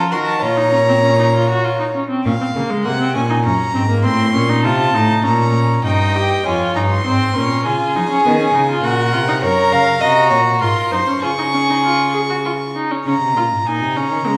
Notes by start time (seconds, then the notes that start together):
Already playing: F3 F4 A4
0.11 D#3 F#4 A#4 C6
0.27 A5
0.42 A#2 F4 C#5 A#5
0.57 D#4
0.73 C#4
0.88 C4
1.04 C#4
1.19 D#4
1.35 F4
1.49 F#4
1.65 F4
1.80 D#4
1.95 C#4
2.10 C4
2.25 A#2 C#4 F5
2.41 C4
2.55 C#3 A#3
2.70 G#3
2.85 C3 A#3 F#5
3.00 C4
3.15 A#2 C#4 G#5
3.29 D#4
3.44 F#2 C#4 A#5
3.74 G#2 C4
3.89 A#3
4.04 A2 C4 C6
4.34 A#2 C#4
4.49 D#4
4.64 C3 F4 A5
4.94 A2 D#4
5.24 A#2 C#4 A#5
5.85 G2 D#4 D#5 G5
6.16 G4
6.45 F2 F4 C#5 G#5
6.75 G2 D#4 A#5
6.90 C6
7.06 G#2 C4 C5
7.36 A#2 C#4 A#4
7.66 C#3 F4 G#4 G#5
7.96 F3 D#4
8.11 C#4
8.25 D#3 B3
8.40 C#4
8.54 C#3 D#4
8.69 F4
8.83 A#2 F#4 A#4 F#5
9.13 C3 F4
9.28 D#4
9.42 F#2 A#4 C#5 A#5
9.72 C#3 F5
10.01 C3 F#4 D#5 A#5
10.30 A#2 C#5
10.61 G#2 F4 A#4 C6
10.91 F#2 D#4 C5
11.08 C#4
11.22 C#3 F4 G#4 C#6
11.38 D#4
11.54 C#4
11.69 D#4
11.84 F4
12.14 G#4
12.30 F#4
12.45 F4
12.76 D#4
12.91 C#4
13.06 C#3 C#4 A#5
13.21 C3
13.36 A#2 F4
13.51 G#2
13.66 A#2 D#4 G#5
13.81 C3
13.96 C#3 C#4 A#5
14.11 D#3
14.26 C#3 G#3